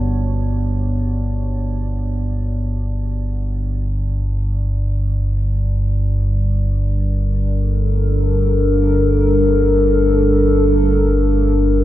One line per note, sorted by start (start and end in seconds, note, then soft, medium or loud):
0.00 3.92 G1 medium
0.00 3.93 G2 medium
0.00 3.89 B3 medium
0.00 3.91 F#4 medium
0.00 3.91 C#5 medium
0.00 7.58 D5 medium
0.00 3.92 A5 medium
3.89 11.84 G3 medium
3.94 11.84 G1 medium
3.94 11.84 G2 medium
5.33 11.84 D4 medium
6.67 11.84 A#4 medium
7.56 11.84 A4 medium